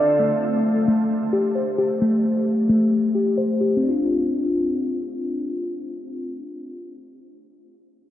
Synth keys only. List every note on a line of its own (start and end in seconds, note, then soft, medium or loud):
0.00 0.19 D3 medium
0.00 0.19 D4 medium
0.00 0.19 D5 medium
0.19 0.86 A3 medium
0.88 2.00 A3 medium
1.33 1.77 G4 medium
1.55 2.92 C5 medium
1.78 3.14 G4 medium
2.01 2.68 A3 medium
2.69 3.83 A3 medium
3.15 3.59 G4 medium
3.37 3.83 C5 medium
3.61 3.83 G4 medium
3.77 6.87 C4 medium
3.83 6.93 D4 medium
3.89 6.99 F4 medium